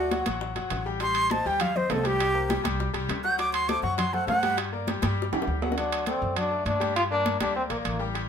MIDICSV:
0, 0, Header, 1, 6, 480
1, 0, Start_track
1, 0, Key_signature, -2, "minor"
1, 0, Tempo, 297767
1, 1628, Time_signature, 4, 2, 24, 8
1, 13359, End_track
2, 0, Start_track
2, 0, Title_t, "Flute"
2, 0, Program_c, 0, 73
2, 0, Note_on_c, 0, 66, 108
2, 410, Note_off_c, 0, 66, 0
2, 1638, Note_on_c, 0, 84, 102
2, 2118, Note_on_c, 0, 81, 88
2, 2143, Note_off_c, 0, 84, 0
2, 2365, Note_on_c, 0, 79, 98
2, 2390, Note_off_c, 0, 81, 0
2, 2598, Note_on_c, 0, 77, 88
2, 2622, Note_off_c, 0, 79, 0
2, 2845, Note_on_c, 0, 72, 91
2, 2869, Note_off_c, 0, 77, 0
2, 3092, Note_on_c, 0, 69, 95
2, 3117, Note_off_c, 0, 72, 0
2, 3322, Note_on_c, 0, 67, 114
2, 3346, Note_off_c, 0, 69, 0
2, 4246, Note_off_c, 0, 67, 0
2, 5220, Note_on_c, 0, 91, 99
2, 5457, Note_off_c, 0, 91, 0
2, 5465, Note_on_c, 0, 86, 98
2, 5683, Note_off_c, 0, 86, 0
2, 5692, Note_on_c, 0, 84, 97
2, 5941, Note_on_c, 0, 86, 99
2, 5965, Note_off_c, 0, 84, 0
2, 6165, Note_off_c, 0, 86, 0
2, 6175, Note_on_c, 0, 85, 96
2, 6406, Note_off_c, 0, 85, 0
2, 6416, Note_on_c, 0, 84, 87
2, 6667, Note_on_c, 0, 78, 94
2, 6691, Note_off_c, 0, 84, 0
2, 6890, Note_off_c, 0, 78, 0
2, 6899, Note_on_c, 0, 78, 107
2, 7369, Note_off_c, 0, 78, 0
2, 13359, End_track
3, 0, Start_track
3, 0, Title_t, "Grand piano"
3, 0, Program_c, 1, 0
3, 192, Note_on_c, 1, 54, 74
3, 198, Note_on_c, 1, 66, 75
3, 202, Note_on_c, 1, 78, 78
3, 387, Note_off_c, 1, 54, 0
3, 391, Note_off_c, 1, 66, 0
3, 393, Note_off_c, 1, 78, 0
3, 434, Note_on_c, 1, 54, 83
3, 439, Note_on_c, 1, 66, 91
3, 445, Note_on_c, 1, 78, 82
3, 825, Note_off_c, 1, 54, 0
3, 828, Note_off_c, 1, 66, 0
3, 831, Note_off_c, 1, 78, 0
3, 891, Note_on_c, 1, 54, 82
3, 901, Note_on_c, 1, 66, 83
3, 904, Note_on_c, 1, 78, 80
3, 1292, Note_off_c, 1, 54, 0
3, 1298, Note_off_c, 1, 66, 0
3, 1299, Note_off_c, 1, 78, 0
3, 1382, Note_on_c, 1, 55, 77
3, 1385, Note_on_c, 1, 67, 86
3, 1390, Note_on_c, 1, 79, 81
3, 1582, Note_off_c, 1, 55, 0
3, 1583, Note_off_c, 1, 67, 0
3, 1586, Note_off_c, 1, 79, 0
3, 1645, Note_on_c, 1, 55, 79
3, 1648, Note_on_c, 1, 67, 78
3, 1652, Note_on_c, 1, 79, 75
3, 2031, Note_off_c, 1, 55, 0
3, 2033, Note_off_c, 1, 67, 0
3, 2036, Note_off_c, 1, 79, 0
3, 2134, Note_on_c, 1, 60, 73
3, 2136, Note_on_c, 1, 72, 66
3, 2143, Note_on_c, 1, 75, 71
3, 2320, Note_off_c, 1, 60, 0
3, 2321, Note_off_c, 1, 72, 0
3, 2325, Note_off_c, 1, 75, 0
3, 2352, Note_on_c, 1, 55, 85
3, 2355, Note_on_c, 1, 67, 85
3, 2360, Note_on_c, 1, 79, 82
3, 2744, Note_off_c, 1, 55, 0
3, 2746, Note_off_c, 1, 67, 0
3, 2749, Note_off_c, 1, 79, 0
3, 2827, Note_on_c, 1, 60, 73
3, 2833, Note_on_c, 1, 75, 72
3, 2834, Note_on_c, 1, 72, 76
3, 3024, Note_off_c, 1, 60, 0
3, 3028, Note_off_c, 1, 72, 0
3, 3028, Note_off_c, 1, 75, 0
3, 3051, Note_on_c, 1, 60, 69
3, 3059, Note_on_c, 1, 72, 68
3, 3065, Note_on_c, 1, 75, 69
3, 3255, Note_off_c, 1, 60, 0
3, 3259, Note_off_c, 1, 72, 0
3, 3263, Note_off_c, 1, 75, 0
3, 3278, Note_on_c, 1, 55, 88
3, 3287, Note_on_c, 1, 67, 76
3, 3290, Note_on_c, 1, 79, 76
3, 3684, Note_off_c, 1, 55, 0
3, 3689, Note_off_c, 1, 67, 0
3, 3691, Note_off_c, 1, 79, 0
3, 3771, Note_on_c, 1, 58, 69
3, 3780, Note_on_c, 1, 70, 75
3, 3783, Note_on_c, 1, 72, 76
3, 3975, Note_off_c, 1, 58, 0
3, 3980, Note_off_c, 1, 70, 0
3, 3982, Note_off_c, 1, 72, 0
3, 4013, Note_on_c, 1, 55, 80
3, 4016, Note_on_c, 1, 67, 78
3, 4023, Note_on_c, 1, 79, 84
3, 4216, Note_off_c, 1, 55, 0
3, 4217, Note_off_c, 1, 67, 0
3, 4222, Note_off_c, 1, 79, 0
3, 4251, Note_on_c, 1, 55, 86
3, 4251, Note_on_c, 1, 67, 89
3, 4261, Note_on_c, 1, 79, 90
3, 4651, Note_off_c, 1, 55, 0
3, 4652, Note_off_c, 1, 67, 0
3, 4657, Note_off_c, 1, 79, 0
3, 4732, Note_on_c, 1, 55, 88
3, 4734, Note_on_c, 1, 67, 83
3, 4736, Note_on_c, 1, 79, 84
3, 5132, Note_off_c, 1, 55, 0
3, 5133, Note_off_c, 1, 67, 0
3, 5134, Note_off_c, 1, 79, 0
3, 5223, Note_on_c, 1, 54, 79
3, 5232, Note_on_c, 1, 66, 88
3, 5234, Note_on_c, 1, 78, 81
3, 5422, Note_off_c, 1, 54, 0
3, 5427, Note_off_c, 1, 66, 0
3, 5428, Note_off_c, 1, 78, 0
3, 5462, Note_on_c, 1, 54, 79
3, 5471, Note_on_c, 1, 66, 75
3, 5474, Note_on_c, 1, 78, 73
3, 5858, Note_off_c, 1, 54, 0
3, 5863, Note_off_c, 1, 66, 0
3, 5865, Note_off_c, 1, 78, 0
3, 5947, Note_on_c, 1, 57, 70
3, 5952, Note_on_c, 1, 72, 71
3, 5954, Note_on_c, 1, 69, 75
3, 6144, Note_off_c, 1, 57, 0
3, 6147, Note_off_c, 1, 72, 0
3, 6148, Note_off_c, 1, 69, 0
3, 6175, Note_on_c, 1, 54, 81
3, 6176, Note_on_c, 1, 66, 91
3, 6185, Note_on_c, 1, 78, 82
3, 6574, Note_off_c, 1, 54, 0
3, 6574, Note_off_c, 1, 66, 0
3, 6580, Note_off_c, 1, 78, 0
3, 6667, Note_on_c, 1, 57, 71
3, 6668, Note_on_c, 1, 69, 79
3, 6676, Note_on_c, 1, 72, 77
3, 6864, Note_off_c, 1, 57, 0
3, 6864, Note_off_c, 1, 69, 0
3, 6869, Note_off_c, 1, 72, 0
3, 6899, Note_on_c, 1, 57, 77
3, 6908, Note_on_c, 1, 69, 69
3, 6909, Note_on_c, 1, 72, 71
3, 7099, Note_off_c, 1, 57, 0
3, 7104, Note_off_c, 1, 69, 0
3, 7105, Note_off_c, 1, 72, 0
3, 7132, Note_on_c, 1, 55, 82
3, 7139, Note_on_c, 1, 67, 84
3, 7141, Note_on_c, 1, 79, 86
3, 7532, Note_off_c, 1, 55, 0
3, 7536, Note_off_c, 1, 67, 0
3, 7537, Note_off_c, 1, 79, 0
3, 7616, Note_on_c, 1, 58, 76
3, 7619, Note_on_c, 1, 70, 74
3, 7624, Note_on_c, 1, 74, 74
3, 7817, Note_off_c, 1, 58, 0
3, 7819, Note_off_c, 1, 70, 0
3, 7822, Note_off_c, 1, 74, 0
3, 7864, Note_on_c, 1, 55, 82
3, 7864, Note_on_c, 1, 67, 77
3, 7875, Note_on_c, 1, 79, 82
3, 8062, Note_off_c, 1, 55, 0
3, 8062, Note_off_c, 1, 67, 0
3, 8068, Note_off_c, 1, 79, 0
3, 8100, Note_on_c, 1, 55, 93
3, 8106, Note_on_c, 1, 67, 85
3, 8113, Note_on_c, 1, 79, 81
3, 8496, Note_off_c, 1, 55, 0
3, 8500, Note_off_c, 1, 67, 0
3, 8504, Note_off_c, 1, 79, 0
3, 8590, Note_on_c, 1, 55, 82
3, 8600, Note_on_c, 1, 79, 77
3, 8604, Note_on_c, 1, 67, 85
3, 8982, Note_off_c, 1, 55, 0
3, 8988, Note_off_c, 1, 79, 0
3, 8990, Note_off_c, 1, 67, 0
3, 9061, Note_on_c, 1, 54, 82
3, 9068, Note_on_c, 1, 66, 76
3, 9074, Note_on_c, 1, 78, 83
3, 9260, Note_off_c, 1, 54, 0
3, 9264, Note_off_c, 1, 66, 0
3, 9268, Note_off_c, 1, 78, 0
3, 9303, Note_on_c, 1, 54, 79
3, 9309, Note_on_c, 1, 66, 74
3, 9312, Note_on_c, 1, 78, 72
3, 9698, Note_off_c, 1, 54, 0
3, 9701, Note_off_c, 1, 66, 0
3, 9703, Note_off_c, 1, 78, 0
3, 9786, Note_on_c, 1, 57, 67
3, 9796, Note_on_c, 1, 69, 71
3, 9798, Note_on_c, 1, 74, 73
3, 10180, Note_off_c, 1, 57, 0
3, 10185, Note_off_c, 1, 69, 0
3, 10187, Note_off_c, 1, 74, 0
3, 10252, Note_on_c, 1, 66, 78
3, 10253, Note_on_c, 1, 54, 77
3, 10257, Note_on_c, 1, 78, 76
3, 10455, Note_off_c, 1, 54, 0
3, 10455, Note_off_c, 1, 66, 0
3, 10458, Note_off_c, 1, 78, 0
3, 10491, Note_on_c, 1, 69, 75
3, 10498, Note_on_c, 1, 57, 71
3, 10504, Note_on_c, 1, 74, 68
3, 10891, Note_off_c, 1, 69, 0
3, 10895, Note_off_c, 1, 57, 0
3, 10898, Note_off_c, 1, 74, 0
3, 10958, Note_on_c, 1, 67, 85
3, 10964, Note_on_c, 1, 55, 86
3, 10972, Note_on_c, 1, 79, 85
3, 11363, Note_off_c, 1, 67, 0
3, 11366, Note_off_c, 1, 55, 0
3, 11371, Note_off_c, 1, 79, 0
3, 11467, Note_on_c, 1, 58, 74
3, 11472, Note_on_c, 1, 70, 79
3, 11480, Note_on_c, 1, 74, 76
3, 11860, Note_off_c, 1, 58, 0
3, 11863, Note_off_c, 1, 70, 0
3, 11868, Note_off_c, 1, 74, 0
3, 11934, Note_on_c, 1, 55, 83
3, 11937, Note_on_c, 1, 67, 90
3, 11944, Note_on_c, 1, 79, 86
3, 12136, Note_off_c, 1, 55, 0
3, 12137, Note_off_c, 1, 67, 0
3, 12141, Note_off_c, 1, 79, 0
3, 12167, Note_on_c, 1, 58, 72
3, 12171, Note_on_c, 1, 70, 65
3, 12181, Note_on_c, 1, 74, 67
3, 12371, Note_off_c, 1, 58, 0
3, 12373, Note_off_c, 1, 70, 0
3, 12379, Note_off_c, 1, 74, 0
3, 12409, Note_on_c, 1, 58, 79
3, 12411, Note_on_c, 1, 70, 73
3, 12422, Note_on_c, 1, 74, 68
3, 12809, Note_off_c, 1, 58, 0
3, 12810, Note_off_c, 1, 70, 0
3, 12817, Note_off_c, 1, 74, 0
3, 12885, Note_on_c, 1, 55, 89
3, 12886, Note_on_c, 1, 67, 85
3, 12893, Note_on_c, 1, 79, 80
3, 13090, Note_off_c, 1, 55, 0
3, 13090, Note_off_c, 1, 67, 0
3, 13094, Note_off_c, 1, 79, 0
3, 13127, Note_on_c, 1, 55, 82
3, 13129, Note_on_c, 1, 67, 77
3, 13134, Note_on_c, 1, 79, 81
3, 13359, Note_off_c, 1, 55, 0
3, 13359, Note_off_c, 1, 67, 0
3, 13359, Note_off_c, 1, 79, 0
3, 13359, End_track
4, 0, Start_track
4, 0, Title_t, "Trombone"
4, 0, Program_c, 2, 57
4, 9313, Note_on_c, 2, 62, 92
4, 9756, Note_off_c, 2, 62, 0
4, 9789, Note_on_c, 2, 60, 88
4, 10234, Note_off_c, 2, 60, 0
4, 10274, Note_on_c, 2, 62, 99
4, 10716, Note_off_c, 2, 62, 0
4, 10743, Note_on_c, 2, 62, 96
4, 11191, Note_off_c, 2, 62, 0
4, 11217, Note_on_c, 2, 65, 111
4, 11327, Note_off_c, 2, 65, 0
4, 11455, Note_on_c, 2, 62, 106
4, 11906, Note_off_c, 2, 62, 0
4, 11942, Note_on_c, 2, 62, 98
4, 12167, Note_off_c, 2, 62, 0
4, 12185, Note_on_c, 2, 60, 95
4, 12293, Note_off_c, 2, 60, 0
4, 12416, Note_on_c, 2, 58, 77
4, 12526, Note_off_c, 2, 58, 0
4, 12658, Note_on_c, 2, 58, 77
4, 12996, Note_off_c, 2, 58, 0
4, 13359, End_track
5, 0, Start_track
5, 0, Title_t, "Upright bass"
5, 0, Program_c, 3, 32
5, 0, Note_on_c, 3, 38, 93
5, 335, Note_off_c, 3, 38, 0
5, 428, Note_on_c, 3, 33, 87
5, 874, Note_off_c, 3, 33, 0
5, 909, Note_on_c, 3, 31, 69
5, 1128, Note_off_c, 3, 31, 0
5, 1138, Note_on_c, 3, 33, 90
5, 2254, Note_off_c, 3, 33, 0
5, 2342, Note_on_c, 3, 39, 86
5, 3014, Note_off_c, 3, 39, 0
5, 3059, Note_on_c, 3, 36, 97
5, 4175, Note_off_c, 3, 36, 0
5, 4266, Note_on_c, 3, 36, 83
5, 4713, Note_off_c, 3, 36, 0
5, 4742, Note_on_c, 3, 36, 70
5, 4968, Note_off_c, 3, 36, 0
5, 4977, Note_on_c, 3, 38, 98
5, 6094, Note_off_c, 3, 38, 0
5, 6175, Note_on_c, 3, 42, 87
5, 6851, Note_off_c, 3, 42, 0
5, 6886, Note_on_c, 3, 43, 90
5, 8008, Note_off_c, 3, 43, 0
5, 8103, Note_on_c, 3, 43, 91
5, 8551, Note_off_c, 3, 43, 0
5, 8583, Note_on_c, 3, 39, 73
5, 8808, Note_off_c, 3, 39, 0
5, 8822, Note_on_c, 3, 38, 92
5, 9936, Note_off_c, 3, 38, 0
5, 10023, Note_on_c, 3, 42, 89
5, 10694, Note_off_c, 3, 42, 0
5, 10728, Note_on_c, 3, 43, 99
5, 11848, Note_off_c, 3, 43, 0
5, 11937, Note_on_c, 3, 38, 89
5, 12387, Note_off_c, 3, 38, 0
5, 12408, Note_on_c, 3, 34, 71
5, 12639, Note_off_c, 3, 34, 0
5, 12654, Note_on_c, 3, 33, 101
5, 13359, Note_off_c, 3, 33, 0
5, 13359, End_track
6, 0, Start_track
6, 0, Title_t, "Drums"
6, 183, Note_on_c, 9, 60, 55
6, 185, Note_on_c, 9, 63, 94
6, 185, Note_on_c, 9, 65, 68
6, 344, Note_off_c, 9, 60, 0
6, 346, Note_off_c, 9, 65, 0
6, 347, Note_off_c, 9, 63, 0
6, 417, Note_on_c, 9, 65, 87
6, 423, Note_on_c, 9, 63, 97
6, 427, Note_on_c, 9, 60, 33
6, 578, Note_off_c, 9, 65, 0
6, 585, Note_off_c, 9, 63, 0
6, 588, Note_off_c, 9, 60, 0
6, 664, Note_on_c, 9, 60, 71
6, 825, Note_off_c, 9, 60, 0
6, 900, Note_on_c, 9, 65, 68
6, 907, Note_on_c, 9, 60, 35
6, 907, Note_on_c, 9, 63, 35
6, 1062, Note_off_c, 9, 65, 0
6, 1068, Note_off_c, 9, 60, 0
6, 1068, Note_off_c, 9, 63, 0
6, 1135, Note_on_c, 9, 65, 90
6, 1144, Note_on_c, 9, 60, 35
6, 1144, Note_on_c, 9, 61, 83
6, 1150, Note_on_c, 9, 63, 35
6, 1296, Note_off_c, 9, 65, 0
6, 1306, Note_off_c, 9, 60, 0
6, 1306, Note_off_c, 9, 61, 0
6, 1311, Note_off_c, 9, 63, 0
6, 1386, Note_on_c, 9, 60, 34
6, 1399, Note_on_c, 9, 63, 33
6, 1547, Note_off_c, 9, 60, 0
6, 1560, Note_off_c, 9, 63, 0
6, 1613, Note_on_c, 9, 65, 68
6, 1622, Note_on_c, 9, 60, 64
6, 1628, Note_on_c, 9, 63, 35
6, 1774, Note_off_c, 9, 65, 0
6, 1783, Note_off_c, 9, 60, 0
6, 1789, Note_off_c, 9, 63, 0
6, 1851, Note_on_c, 9, 65, 91
6, 1871, Note_on_c, 9, 63, 34
6, 2012, Note_off_c, 9, 65, 0
6, 2032, Note_off_c, 9, 63, 0
6, 2094, Note_on_c, 9, 65, 69
6, 2106, Note_on_c, 9, 60, 56
6, 2115, Note_on_c, 9, 63, 97
6, 2255, Note_off_c, 9, 65, 0
6, 2268, Note_off_c, 9, 60, 0
6, 2276, Note_off_c, 9, 63, 0
6, 2355, Note_on_c, 9, 60, 39
6, 2516, Note_off_c, 9, 60, 0
6, 2576, Note_on_c, 9, 65, 98
6, 2594, Note_on_c, 9, 63, 35
6, 2594, Note_on_c, 9, 64, 89
6, 2595, Note_on_c, 9, 60, 67
6, 2737, Note_off_c, 9, 65, 0
6, 2755, Note_off_c, 9, 63, 0
6, 2755, Note_off_c, 9, 64, 0
6, 2756, Note_off_c, 9, 60, 0
6, 2835, Note_on_c, 9, 63, 37
6, 2835, Note_on_c, 9, 64, 74
6, 2840, Note_on_c, 9, 60, 37
6, 2996, Note_off_c, 9, 63, 0
6, 2996, Note_off_c, 9, 64, 0
6, 3002, Note_off_c, 9, 60, 0
6, 3060, Note_on_c, 9, 65, 67
6, 3060, Note_on_c, 9, 66, 70
6, 3073, Note_on_c, 9, 63, 81
6, 3087, Note_on_c, 9, 60, 37
6, 3087, Note_on_c, 9, 61, 82
6, 3222, Note_off_c, 9, 65, 0
6, 3222, Note_off_c, 9, 66, 0
6, 3234, Note_off_c, 9, 63, 0
6, 3248, Note_off_c, 9, 60, 0
6, 3248, Note_off_c, 9, 61, 0
6, 3304, Note_on_c, 9, 65, 69
6, 3312, Note_on_c, 9, 63, 84
6, 3321, Note_on_c, 9, 60, 37
6, 3465, Note_off_c, 9, 65, 0
6, 3473, Note_off_c, 9, 63, 0
6, 3483, Note_off_c, 9, 60, 0
6, 3551, Note_on_c, 9, 63, 35
6, 3553, Note_on_c, 9, 65, 95
6, 3558, Note_on_c, 9, 60, 60
6, 3713, Note_off_c, 9, 63, 0
6, 3714, Note_off_c, 9, 65, 0
6, 3719, Note_off_c, 9, 60, 0
6, 3792, Note_on_c, 9, 63, 35
6, 3953, Note_off_c, 9, 63, 0
6, 4029, Note_on_c, 9, 63, 102
6, 4032, Note_on_c, 9, 65, 67
6, 4040, Note_on_c, 9, 60, 55
6, 4191, Note_off_c, 9, 63, 0
6, 4193, Note_off_c, 9, 65, 0
6, 4202, Note_off_c, 9, 60, 0
6, 4273, Note_on_c, 9, 65, 92
6, 4274, Note_on_c, 9, 63, 101
6, 4280, Note_on_c, 9, 60, 35
6, 4434, Note_off_c, 9, 65, 0
6, 4435, Note_off_c, 9, 63, 0
6, 4442, Note_off_c, 9, 60, 0
6, 4517, Note_on_c, 9, 60, 76
6, 4679, Note_off_c, 9, 60, 0
6, 4744, Note_on_c, 9, 65, 70
6, 4749, Note_on_c, 9, 63, 38
6, 4756, Note_on_c, 9, 60, 33
6, 4905, Note_off_c, 9, 65, 0
6, 4910, Note_off_c, 9, 63, 0
6, 4918, Note_off_c, 9, 60, 0
6, 4986, Note_on_c, 9, 63, 34
6, 4988, Note_on_c, 9, 65, 90
6, 4998, Note_on_c, 9, 60, 35
6, 4998, Note_on_c, 9, 61, 89
6, 5147, Note_off_c, 9, 63, 0
6, 5150, Note_off_c, 9, 65, 0
6, 5159, Note_off_c, 9, 60, 0
6, 5159, Note_off_c, 9, 61, 0
6, 5224, Note_on_c, 9, 63, 36
6, 5231, Note_on_c, 9, 60, 37
6, 5386, Note_off_c, 9, 63, 0
6, 5392, Note_off_c, 9, 60, 0
6, 5462, Note_on_c, 9, 60, 62
6, 5467, Note_on_c, 9, 65, 76
6, 5468, Note_on_c, 9, 63, 36
6, 5623, Note_off_c, 9, 60, 0
6, 5628, Note_off_c, 9, 65, 0
6, 5629, Note_off_c, 9, 63, 0
6, 5706, Note_on_c, 9, 65, 97
6, 5710, Note_on_c, 9, 63, 37
6, 5867, Note_off_c, 9, 65, 0
6, 5871, Note_off_c, 9, 63, 0
6, 5945, Note_on_c, 9, 60, 57
6, 5946, Note_on_c, 9, 63, 97
6, 5950, Note_on_c, 9, 65, 67
6, 6106, Note_off_c, 9, 60, 0
6, 6107, Note_off_c, 9, 63, 0
6, 6111, Note_off_c, 9, 65, 0
6, 6181, Note_on_c, 9, 60, 38
6, 6192, Note_on_c, 9, 63, 37
6, 6343, Note_off_c, 9, 60, 0
6, 6353, Note_off_c, 9, 63, 0
6, 6416, Note_on_c, 9, 60, 76
6, 6425, Note_on_c, 9, 63, 35
6, 6425, Note_on_c, 9, 64, 90
6, 6428, Note_on_c, 9, 65, 95
6, 6577, Note_off_c, 9, 60, 0
6, 6586, Note_off_c, 9, 63, 0
6, 6586, Note_off_c, 9, 64, 0
6, 6589, Note_off_c, 9, 65, 0
6, 6655, Note_on_c, 9, 60, 34
6, 6670, Note_on_c, 9, 63, 38
6, 6670, Note_on_c, 9, 64, 78
6, 6816, Note_off_c, 9, 60, 0
6, 6831, Note_off_c, 9, 63, 0
6, 6831, Note_off_c, 9, 64, 0
6, 6900, Note_on_c, 9, 60, 35
6, 6900, Note_on_c, 9, 61, 92
6, 6904, Note_on_c, 9, 65, 64
6, 6911, Note_on_c, 9, 63, 87
6, 7061, Note_off_c, 9, 60, 0
6, 7061, Note_off_c, 9, 61, 0
6, 7066, Note_off_c, 9, 65, 0
6, 7072, Note_off_c, 9, 63, 0
6, 7139, Note_on_c, 9, 65, 65
6, 7141, Note_on_c, 9, 60, 35
6, 7145, Note_on_c, 9, 63, 86
6, 7301, Note_off_c, 9, 65, 0
6, 7302, Note_off_c, 9, 60, 0
6, 7306, Note_off_c, 9, 63, 0
6, 7374, Note_on_c, 9, 60, 66
6, 7383, Note_on_c, 9, 65, 100
6, 7535, Note_off_c, 9, 60, 0
6, 7544, Note_off_c, 9, 65, 0
6, 7634, Note_on_c, 9, 63, 36
6, 7796, Note_off_c, 9, 63, 0
6, 7856, Note_on_c, 9, 60, 54
6, 7861, Note_on_c, 9, 63, 99
6, 7865, Note_on_c, 9, 65, 74
6, 8017, Note_off_c, 9, 60, 0
6, 8023, Note_off_c, 9, 63, 0
6, 8027, Note_off_c, 9, 65, 0
6, 8096, Note_on_c, 9, 60, 74
6, 8105, Note_on_c, 9, 63, 100
6, 8106, Note_on_c, 9, 65, 82
6, 8257, Note_off_c, 9, 60, 0
6, 8267, Note_off_c, 9, 63, 0
6, 8267, Note_off_c, 9, 65, 0
6, 8345, Note_on_c, 9, 63, 38
6, 8415, Note_on_c, 9, 60, 76
6, 8506, Note_off_c, 9, 63, 0
6, 8576, Note_off_c, 9, 60, 0
6, 8584, Note_on_c, 9, 63, 36
6, 8587, Note_on_c, 9, 65, 82
6, 8589, Note_on_c, 9, 61, 83
6, 8736, Note_off_c, 9, 61, 0
6, 8736, Note_on_c, 9, 61, 107
6, 8745, Note_off_c, 9, 63, 0
6, 8748, Note_off_c, 9, 65, 0
6, 8825, Note_on_c, 9, 63, 33
6, 8897, Note_off_c, 9, 61, 0
6, 8986, Note_off_c, 9, 63, 0
6, 9063, Note_on_c, 9, 66, 71
6, 9066, Note_on_c, 9, 63, 35
6, 9218, Note_on_c, 9, 61, 69
6, 9225, Note_off_c, 9, 66, 0
6, 9227, Note_off_c, 9, 63, 0
6, 9308, Note_on_c, 9, 63, 32
6, 9312, Note_on_c, 9, 65, 73
6, 9379, Note_off_c, 9, 61, 0
6, 9469, Note_off_c, 9, 63, 0
6, 9473, Note_off_c, 9, 65, 0
6, 9541, Note_on_c, 9, 63, 37
6, 9551, Note_on_c, 9, 65, 95
6, 9702, Note_off_c, 9, 63, 0
6, 9712, Note_off_c, 9, 65, 0
6, 9775, Note_on_c, 9, 65, 72
6, 9785, Note_on_c, 9, 63, 96
6, 9937, Note_off_c, 9, 65, 0
6, 9946, Note_off_c, 9, 63, 0
6, 10027, Note_on_c, 9, 63, 35
6, 10188, Note_off_c, 9, 63, 0
6, 10260, Note_on_c, 9, 65, 95
6, 10264, Note_on_c, 9, 63, 34
6, 10264, Note_on_c, 9, 64, 81
6, 10421, Note_off_c, 9, 65, 0
6, 10425, Note_off_c, 9, 63, 0
6, 10425, Note_off_c, 9, 64, 0
6, 10509, Note_on_c, 9, 63, 37
6, 10670, Note_off_c, 9, 63, 0
6, 10739, Note_on_c, 9, 65, 73
6, 10745, Note_on_c, 9, 63, 81
6, 10900, Note_off_c, 9, 65, 0
6, 10906, Note_off_c, 9, 63, 0
6, 10984, Note_on_c, 9, 65, 67
6, 10990, Note_on_c, 9, 63, 90
6, 11145, Note_off_c, 9, 65, 0
6, 11151, Note_off_c, 9, 63, 0
6, 11223, Note_on_c, 9, 63, 36
6, 11226, Note_on_c, 9, 65, 93
6, 11384, Note_off_c, 9, 63, 0
6, 11387, Note_off_c, 9, 65, 0
6, 11462, Note_on_c, 9, 63, 35
6, 11623, Note_off_c, 9, 63, 0
6, 11701, Note_on_c, 9, 63, 98
6, 11701, Note_on_c, 9, 65, 76
6, 11862, Note_off_c, 9, 63, 0
6, 11862, Note_off_c, 9, 65, 0
6, 11937, Note_on_c, 9, 65, 89
6, 11938, Note_on_c, 9, 63, 94
6, 12098, Note_off_c, 9, 65, 0
6, 12099, Note_off_c, 9, 63, 0
6, 12178, Note_on_c, 9, 63, 39
6, 12339, Note_off_c, 9, 63, 0
6, 12414, Note_on_c, 9, 65, 69
6, 12432, Note_on_c, 9, 63, 39
6, 12576, Note_off_c, 9, 65, 0
6, 12594, Note_off_c, 9, 63, 0
6, 12657, Note_on_c, 9, 65, 91
6, 12670, Note_on_c, 9, 63, 33
6, 12818, Note_off_c, 9, 65, 0
6, 12831, Note_off_c, 9, 63, 0
6, 12908, Note_on_c, 9, 63, 35
6, 13070, Note_off_c, 9, 63, 0
6, 13143, Note_on_c, 9, 65, 71
6, 13153, Note_on_c, 9, 63, 36
6, 13304, Note_off_c, 9, 65, 0
6, 13314, Note_off_c, 9, 63, 0
6, 13359, End_track
0, 0, End_of_file